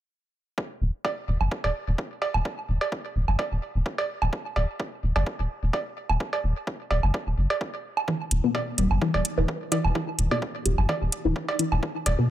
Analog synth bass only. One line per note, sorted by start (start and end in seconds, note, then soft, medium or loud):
0.81 0.90 E1 medium
1.28 1.37 E1 medium
1.41 1.48 G1 loud
1.64 1.72 E1 medium
1.88 1.95 E1 medium
2.34 2.42 E1 medium
2.69 2.78 E1 medium
3.15 3.25 E1 medium
3.28 3.36 G1 loud
3.52 3.59 E1 medium
3.75 3.83 E1 medium
4.22 4.30 E1 medium
4.56 4.65 E1 medium
5.03 5.12 E1 medium
5.16 5.23 G1 loud
5.39 5.47 E1 medium
5.63 5.70 E1 medium
6.10 6.17 E1 medium
6.44 6.53 E1 medium
6.91 7.00 E1 medium
7.03 7.11 G1 loud
7.27 7.34 E1 medium
7.38 7.46 G1 medium
8.31 8.40 E1 medium
8.78 8.87 E1 medium
8.91 8.98 G1 loud
9.14 9.22 E1 medium
9.38 9.45 E1 medium
9.85 9.92 E1 medium
10.19 10.28 E1 medium
10.66 10.75 E1 medium
10.78 10.86 G1 loud
11.02 11.09 E1 medium
11.25 11.33 E1 medium
11.72 11.80 E1 medium
12.06 12.15 E1 medium